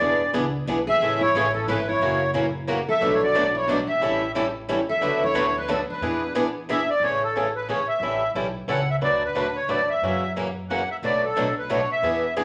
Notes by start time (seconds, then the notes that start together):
Already playing: G#4 D5
0.00 E1 E3 B3 D4 G#4 B4
0.33 C#2 E3 B3 D4 G#4 B4
0.66 B1 E3 B3 D4 G#4 B4
0.87 G#4 E5
1.00 A1 C#3 E3 G#3 A3 C#4 E4 G#4 A4
1.21 E4 C#5
1.34 A1 C#3 E3 G#3 A3 C#4 E4 G#4 A4
1.54 C#4 A4
1.67 G#1 C#3 E3 G#3 A3 C#4 E4 G#4 A4 B4
1.88 E4 C#5
2.00 F#1 C#3 E3 F#3 A#3 C#4 E4 F#4 A#4
2.34 C#3 E3 F#3 A#3 C#4 E4 F#4 A#4
2.67 C#3 E3 F#3 A#3 C#4 E4 F#4 A#4
2.89 A4 E5
3.01 B1 B2 F#3 A3 D4 F#4 B4
3.12 E4 C#5
3.20 F#4 D5
3.35 B2 F#3 A3 D4 F#4 B4
3.55 E4 C#5
3.67 B2 F#3 A3 D4 F#4 B4 D5
3.87 G4 E5
4.01 A1 E3 G3 C#4 E4 A4
4.35 E3 G3 C#4 E4 A4
4.69 E3 G3 C#4 E4 A4
4.89 A4 E5
5.01 D2 D3 F#3 A3 B3 D4 F#4 B4
5.24 E4 C#5
5.34 D3 F#3 A3 B3 D4 F#4 B4
5.58 D4 B4
5.68 D3 F#3 A3 B3 D4 F#4 B4
5.73 A4
5.90 D4 B4
6.01 E2 E3 B3 D4 G#4 B4
6.35 E3 B3 D4 G#4 B4
6.69 E3 B3 D4 G#4 B4 E5
6.90 D5
7.00 A1 C#3 E3 C#5
7.04 A3 C#4 G#4
7.23 A4
7.36 C#3 E3 A3 C#4 G#4
7.56 B4
7.69 C#3 E3 A3 C#4 G#4 C#5
7.88 E5
8.00 A1 E3 G3 C#4 E4 A4
8.34 B1 E3 G3 C#4 E4 A4
8.68 C#2 E3 G3 C#4 E4 A4 F#5
8.90 E5
9.01 D2 D3 F#3 A3 D4 F#4 B4 D5
9.25 B4
9.35 D2 D3 F#3 A3 D4 F#4 B4
9.55 C#5
9.68 E2 D3 F#3 A3 D4 F#4 B4 D5
9.89 E5
10.02 F#2 C#3 E3 A#3 C#4 F#4
10.36 C#3 E3 A#3 C#4 F#4
10.69 C#3 E3 A#3 C#4 F#4 F#5
10.91 E5
11.02 B1 B2 F#3 A3 D4 F#4 B4 D5
11.25 A4
11.36 B2 F#3 A3 D4 F#4 B4
11.59 B4
11.70 B2 F#3 A3 D4 F#4 B4 C#5
11.92 E5
12.02 E2 E3 B3 D4 G#4 B4
12.36 E3 B3 D4 G#4 B4